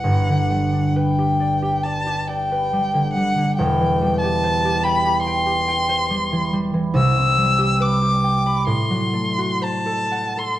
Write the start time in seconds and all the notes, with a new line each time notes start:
Already playing: G3 B4 F#5
0.04 G1 G2
0.29 D3
0.50 G3
0.73 D4
0.95 B4 G5
1.19 G4
1.40 D5
1.62 G4
1.83 D5 A5
2.07 G4
2.28 D5 G5
2.52 B4
2.73 G3
2.94 D3
3.13 G3 F#5
3.38 D3
3.56 E1 E2 G5
3.80 E3
4.02 G3
4.20 G4 A5
4.43 C5
4.65 G4
4.84 G5 B5
5.06 G4
5.22 C6
5.27 G5
5.46 G4
5.68 G5
5.89 C5
6.10 G3
6.32 E3
6.53 G3
6.74 E3
6.94 C2 C3 E6
7.18 C4
7.38 G3
7.59 G4
7.80 B4 D6
8.02 G4
8.24 G5
8.46 B5
8.67 A2 C6
8.90 F#3
9.13 A3
9.38 F#4
9.61 C5 A5
9.86 A4
10.11 F#5
10.37 A4 C6